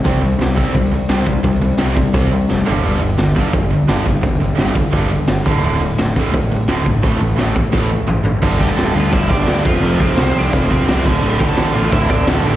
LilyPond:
<<
  \new Staff \with { instrumentName = "Overdriven electric guitar" } { \time 4/4 \key g \dorian \tempo 4 = 172 r1 | r1 | r1 | r1 |
r1 | r1 | r8 <g' g''>16 <a' a''>8. <f' f''>8 <e' e''>8 <d' d''>8 <d' d''>8 <f' f''>8~ | <f' f''>8 <c' c''>8 <c' c''>8 <d' d''>8 <c' c''>4. r8 |
r8 <g' g''>16 <a' a''>8. <f' f''>8 <e' e''>8 <d' d''>8 <a' a''>8 <g' g''>8 | }
  \new Staff \with { instrumentName = "Distorted electric guitar" } { \clef bass \time 4/4 \key g \dorian <c g c'>8 <c g>8 <c g>8 <c g c'>8 <c g>8 <c g>8 <c g c'>8 <c g>8 | <c g>8 <c g>8 <c g c'>8 <c g>8 <c g c'>8 <c g>8 <c g>8 <g, d g>8 | <g, d g>8 <g, d>8 <g, d>8 <g, d g>8 <g, d>8 <g, d>8 <g, d g>8 <g, d>8 | <g, d>8 <g, d>8 <g, d g>8 <g, d>8 <g, d g>8 <g, d>8 <g, d>8 <d, a, d>8 |
<d, a, d>8 <d, a,>8 <d, a,>8 <d, a, d>8 <d, a,>8 <d, a,>8 <d, a, d>8 <d, a,>8 | <a, e a>8 <a, e>8 <a, e a>8 <a, e>8 <a, e a>8 <a, e>8 <a, e>8 <a, e>8 | <g, d g>8 <g, d g>8 <g, d g>8 <g, d g>8 <g, d g>8 <g, d g>8 <g, d g>8 <f, c f>8 | <f, c f>8 <f, c f>8 <f, c f>8 <f, c f>8 <f, c f>8 <f, c f>8 <f, c f>8 <d, a, d>8 |
<d, a, d>8 <d, a, d>8 <d, a, d>8 <d, a, d>8 <d, a, d>8 <d, a, d>8 <d, a, d>8 <d, a, d>8 | }
  \new Staff \with { instrumentName = "Overdriven electric guitar" } { \clef bass \time 4/4 \key g \dorian <c g c'>8 <c g>8 <c g>8 <c g c'>8 <c g>8 <c g>8 <c g c'>8 <c g>8 | <c g>8 <c g>8 <c g c'>8 <c g>8 <c g c'>8 <c g>8 <c g>8 <g, d g>8 | <g, d g>8 <g, d>8 <g, d>8 <g, d g>8 <g, d>8 <g, d>8 <g, d g>8 <g, d>8 | <g, d>8 <g, d>8 <g, d g>8 <g, d>8 <g, d g>8 <g, d>8 <g, d>8 <d, a, d>8 |
<d, a, d>8 <d, a,>8 <d, a,>8 <d, a, d>8 <d, a,>8 <d, a,>8 <d, a, d>8 <d, a,>8 | <a, e a>8 <a, e>8 <a, e a>8 <a, e>8 <a, e a>8 <a, e>8 <a, e>8 <a, e>8 | <g, d g>8 <g, d g>8 <g, d g>8 <g, d g>8 <g, d g>8 <g, d g>8 <g, d g>8 <f, c f>8 | <f, c f>8 <f, c f>8 <f, c f>8 <f, c f>8 <f, c f>8 <f, c f>8 <f, c f>8 <d, a, d>8 |
<d, a, d>8 <d, a, d>8 <d, a, d>8 <d, a, d>8 <d, a, d>8 <d, a, d>8 <d, a, d>8 <d, a, d>8 | }
  \new Staff \with { instrumentName = "Picked electric bass" } { \clef bass \time 4/4 \key g \dorian c,8 c,8 c,4 c,4 c,8 c,8 | c,8 c,8 c,4 c,4 f,,8 g,,8 | g,,8 g,,8 g,,4 g,,4 g,,8 g,,8 | g,,8 g,,8 g,,4 g,,4 g,,8 d,,8 |
d,,8 d,,8 d,,4 d,,4 d,,8 g,,8 | a,,8 a,,8 a,,4 a,,4 a,,8 a,,8 | g,,4 d,,8 d,8 g,,8 g,,8 d,8 f,,8 | f,,4 c,8 c,8 f,,8 f,,8 c,8 d,,8 |
d,,4 a,,8 a,,8 d,,8 d,,8 a,,8 a,,8 | }
  \new DrumStaff \with { instrumentName = "Drums" } \drummode { \time 4/4 <hho bd>8 hho8 <hho sn>8 <hho bd>8 <hho bd>8 hho8 <hho sn>8 <hho bd>8 | <hho bd>8 hho8 <hho sn>8 <hho bd>8 <hho bd>8 hho8 sn8 tomfh8 | hho8 hho8 <hho sn>8 <hho bd>8 <hho bd>8 hho8 <hho sn>8 <hho bd>8 | <hho bd>8 hho8 <hho sn>8 <hho bd>8 <hho bd>8 hho8 <hho sn>8 <hho bd>8 |
hho8 hho8 <hho sn>8 <hho bd>8 <hho bd>8 hho8 <hho sn>8 <hho bd>8 | <hho bd>8 hho8 <hho sn>8 <hho bd>8 <bd sn>4 toml8 tomfh8 | <cymc bd>8 bd8 <cymc sn>4 <cymc bd>8 bd8 <cymc sn>8 bd8 | cymc8 bd8 <cymc sn>4 <cymc bd>8 bd8 <cymc sn>8 <cymc bd>8 |
cymc8 bd8 <cymc sn>4 <cymc bd>8 bd8 <cymc sn>4 | }
>>